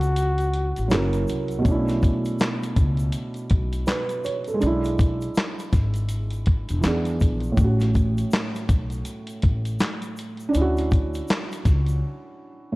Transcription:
Already playing: C#2 C#4 D4 E4 F#4
0.01 closed hi-hat, shaker
0.16 closed hi-hat, shaker
0.38 closed hi-hat, shaker
0.53 closed hi-hat
0.76 A1, closed hi-hat, shaker
0.88 F#1 F#3 C#4, snare, shaker
0.92 E4 A#4, clap, closed hi-hat
1.13 closed hi-hat, shaker
1.28 C2, closed hi-hat, shaker
1.48 closed hi-hat, shaker
1.59 B2 A3
1.65 B1 C#4 D4, kick, closed hi-hat, shaker
1.71 E4
1.88 snare, closed hi-hat, shaker
2.02 kick, closed hi-hat, shaker
2.25 closed hi-hat, shaker
2.39 snare, clap, closed hi-hat, shaker
2.63 closed hi-hat, shaker
2.76 C#2, kick, closed hi-hat, shaker
2.97 closed hi-hat, shaker
3.12 closed hi-hat, shaker
3.34 closed hi-hat, shaker
3.50 B1, kick, closed hi-hat
3.73 closed hi-hat, shaker
3.87 B4, snare, clap, closed hi-hat, shaker
4.09 closed hi-hat, shaker
4.24 C#5, closed hi-hat, shaker
4.44 A4, closed hi-hat, shaker
4.54 G#3
4.60 B1 D4, closed hi-hat, shaker
4.66 E4
4.84 closed hi-hat, shaker
4.99 kick, closed hi-hat, shaker
5.21 closed hi-hat, shaker
5.35 snare, clap, closed hi-hat, shaker
5.59 closed hi-hat, shaker
5.73 G#1, kick, snare, closed hi-hat, shaker
5.94 closed hi-hat, shaker
6.09 closed hi-hat, shaker
6.30 closed hi-hat, shaker
6.46 kick, closed hi-hat
6.69 E1, closed hi-hat, shaker
6.81 E2 E3 B3, snare, clap, closed hi-hat, shaker
6.85 D4 G#4
7.05 closed hi-hat, shaker
7.20 A#1, kick, closed hi-hat, shaker
7.40 closed hi-hat, shaker
7.52 A2 A3
7.57 A1 C#4, kick, closed hi-hat, shaker
7.64 F#4
7.80 snare, closed hi-hat, shaker
7.95 kick, closed hi-hat, shaker
8.18 closed hi-hat, shaker
8.31 snare, clap, closed hi-hat, shaker
8.55 closed hi-hat, shaker
8.69 B1, kick, closed hi-hat, shaker
8.90 closed hi-hat, shaker
9.05 closed hi-hat, shaker
9.27 closed hi-hat, shaker
9.42 A1, kick, closed hi-hat
9.65 closed hi-hat, shaker
9.79 snare, clap, closed hi-hat, shaker
10.02 closed hi-hat, shaker
10.17 closed hi-hat, shaker
10.37 closed hi-hat, shaker
10.49 D4
10.53 D2 C#4, closed hi-hat, shaker
10.57 E4
10.61 F#4
10.77 closed hi-hat, shaker
10.91 kick, closed hi-hat, shaker
11.14 closed hi-hat, shaker
11.28 snare, clap, closed hi-hat, shaker
11.52 closed hi-hat, shaker
11.65 C#2, kick, snare, closed hi-hat, shaker
11.86 closed hi-hat, shaker
12.72 A2

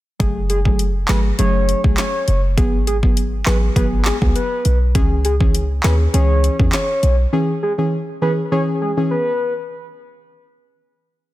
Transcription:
0.19 F#1 F#3 A3 G#4, kick, closed hi-hat
0.50 G#4, closed hi-hat
0.65 F#3 A3 G#4, kick
0.79 closed hi-hat
1.08 G#1 F#3 A3 G#4 B4, snare, clap, closed hi-hat
1.38 F#1 F#3 A3 G#4 C#5, closed hi-hat
1.69 closed hi-hat
1.84 B1 F#3 A3 G#4, kick
1.98 C#5, snare, clap, closed hi-hat
2.28 F#1, closed hi-hat
2.57 G#1 F#3 B3 G#4, kick, closed hi-hat
2.87 G#4, closed hi-hat
3.03 F#3 B3 G#4, kick
3.17 closed hi-hat
3.46 A1 F#3 B3 G#4 B4, snare, clap, closed hi-hat
3.76 G#1 F#3 B3 G#4 B4, kick, closed hi-hat
4.05 G#4, snare, clap, closed hi-hat
4.21 C#2 F#3 B3 G#4, kick
4.35 B4, closed hi-hat
4.65 B1, closed hi-hat
4.95 C#2 E3 C#4 G#4, kick, closed hi-hat
5.25 G#4, closed hi-hat
5.40 E3 C#4 G#4, kick
5.55 closed hi-hat
5.84 D#2 E3 C#4 G#4 B4, snare, clap, closed hi-hat
6.13 C#2 E3 C#4 G#4 C#5, closed hi-hat
6.44 closed hi-hat
6.59 E2 E3 C#4 G#4, kick
6.73 C#5, snare, clap, closed hi-hat
7.03 B1, closed hi-hat
7.32 E3 C#4 G#4
7.63 G#4
7.78 E3 C#4 G#4
8.22 E3 C#4 G#4 B4
8.51 E3 C#4 G#4 C#5
8.81 G#4
8.97 E3 C#4 G#4
9.11 B4

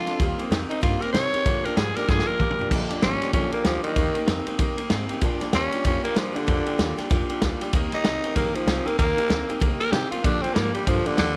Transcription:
Already playing: F4
0.06 F2 D3 D4 A4, muted upright bass stroke, snare, ride
0.10 C4
0.19 D#2 D#3 G3 A#3 C4 G4 A#4, kick, ride
0.39 D#3 A#3 C4 G4 A#4, ride
0.50 F2 D#3 G3 C4 G4 A#4, snare, ride
0.69 D#3 C4 D#4 G4 A#4, muted upright bass stroke, ride
0.81 G2 D#3 G3 A#3 C4 F4 G4 A#4, kick, ride
1.01 D#3 A#3 C4 G4 A#4, muted upright bass stroke, ride
1.13 C3 D#3 G3 C4 C#5, snare, ride
1.17 G4 A#4
1.33 D#3 C4 G4 A#4, muted upright bass stroke, ride
1.45 A#2 D3 F3 A#3 D4 G4, kick, ride
1.64 A#2 F3 A#3 D4 G4 A#4, muted upright bass stroke, ride
1.69 F3
1.77 G#2 A#2 F3 G3 A#3 D4 G#4, snare, ride
1.81 G4
1.95 A#2 F3 G3 A#3 D4 G4 A#4, muted upright bass stroke, snare, ride
2.08 G2 A#2 D3 F3 A#3 D4 G4 G#4, kick, snare
2.19 snare
2.27 A#2 F3 A#3 D4 G4 A#4, muted upright bass stroke
2.39 A#2 F3 G3 A#3 D4, kick, mid tom
2.51 mid tom
2.58 A#2 G3 A#3 D4 G4, muted upright bass stroke, floor tom
2.62 F3
2.71 A#1 A#2 D3 F3 A#3 D4 G4, kick, crash
2.89 A#2 F3 A#3 D4 G4, muted upright bass stroke, ride
3.01 G#1 A#2 F3 G3 A#3 C#4 G4, snare, ride
3.21 A#2 G3 A#3 D4 G4, muted upright bass stroke, snare, ride
3.25 F3
3.33 A#1 A#2 D3 F3 A#3 C#4 D4 G4, kick, ride
3.51 A#2 F3 A#3 D4 G4, muted upright bass stroke, ride
3.55 F3 A#3
3.64 D2 A#2 F3 G3 A#3 D4, snare, ride
3.68 G4
3.83 A#2 D#3 G3 D4 G4, ride
3.88 F3 A#3
3.96 D#2 C3 D#3 A#3 D#4 G4 A#4, kick, ride
4.15 D#3 A#3 D#4 G4 A#4, muted upright bass stroke, ride
4.20 A#3
4.27 F2 D#3 A#3 C4 D#4 A#4, snare, ride
4.31 G4
4.46 D#3 A#3 C4 D#4 G4 A#4, muted upright bass stroke, ride
4.58 G2 C3 D#3 A#3 D#4 G4 A#4, kick, ride
4.77 D#3 A#3 D#4 G4 A#4, muted upright bass stroke, ride
4.82 A#3
4.90 G#2 D#3 A#3 C4 D#4 G4 A#4, snare, ride
5.09 D#3 C4 D#4 G4 A#4, muted upright bass stroke, ride
5.13 A#3
5.21 A#2 F3 A#3 D4 F4 G4, kick, ride
5.40 A#2 F3 D4 F4 G4, muted upright bass stroke, snare, ride
5.53 D#2 A#2 G3 A#3 C#4 D4 F4 G4, snare, ride
5.71 A#2 G3 D4 F4 G4, ride
5.84 F2 A#2 F3 A#3 C#4 D4 F4 G4, kick, snare, ride
6.02 A#2 F3 A#3 D4 F4 G4, muted upright bass stroke, ride
6.14 G2 A#2 F3 G3 A#3 D4 F4 G4, snare, ride
6.33 A#2 D3 G3 D4 F4 G4, muted upright bass stroke, ride
6.47 F2 A#2 F3 A#3 D4 F4 G4, kick, ride
6.66 A#2 F3 D4 F4 G4, muted upright bass stroke, ride
6.78 D#2 A#2 G3 A#3 D4 F4 G4, snare, ride
6.97 A#2 G3 D4 F4 G4, muted upright bass stroke, snare, ride
7.10 F2 A#2 F3 A#3 D4 F4 G4, kick, snare, ride
7.28 A#2 F3 D4 F4 G4, muted upright bass stroke, ride
7.42 D2 A#2 G3 A#3 D4 F4, kick, snare, ride
7.46 G4
7.61 A#2 G3 D4 F4 G4, snare, ride
7.73 D#2 C3 D#3 A#3 D#4 G4 A#4, kick, ride
7.92 D#3 A#3 D#4 G4 A#4, muted upright bass stroke, snare, ride
7.97 A#3
8.04 C2 D#3 A#3 C4 D#4 A#4, snare, ride
8.08 G4
8.24 D#3 A#3 C4 D#4 G4 A#4, ride
8.34 A#1 C3 D#3 A#3 D#4 G4 A#4, kick, ride
8.55 D#3 F3 A#3 D#4 G4 A#4, muted upright bass stroke, ride
8.66 C2 D#3 A#3 C4 D#4 G4 A#4, snare, ride
8.85 D#3 A#3 C4 D#4 G4 A#4, muted upright bass stroke, ride
8.98 D#2 C3 D#3 A#3 D#4 G4 A#4, kick, ride
9.18 D#3 A#3 D#4 G4 A#4, muted upright bass stroke, ride
9.22 A#3
9.29 D2 D#3 A#3 C4 D#4 G4 A#4, snare, ride
9.48 D#3 C4 D#4 G4 A#4, ride
9.52 A#3
9.60 C2 C3 D#3 A#3 D#4 G4 A#4, kick, ride
9.80 D#3 A#3 D#4 G4 A#4, ride
9.91 C3 D#3 A#3 C4 D#4 G4, snare, ride
9.95 G4 A#4
10.11 D#3 A#3 C4 D#4 F4 G4 A#4, muted upright bass stroke, ride
10.23 A#2 D3 F3 A#3 D4 G4, kick, ride
10.42 A#2 F3 C4 D4 G4, muted upright bass stroke, ride
10.47 F3 A#3
10.54 G#2 A#2 F3 G3 A#3, snare, ride
10.59 D4 G4
10.74 A#2 G3 A#3 D4 G4, muted upright bass stroke, ride
10.79 F3
10.87 G2 A#2 D3 F3 A#3 D4 G4, kick, snare, ride
11.05 A#2 D3 F3 A#3 D4 G4, muted upright bass stroke, ride
11.18 D#2 A#2 D3 F3 G3 A#3 G4, snare, ride

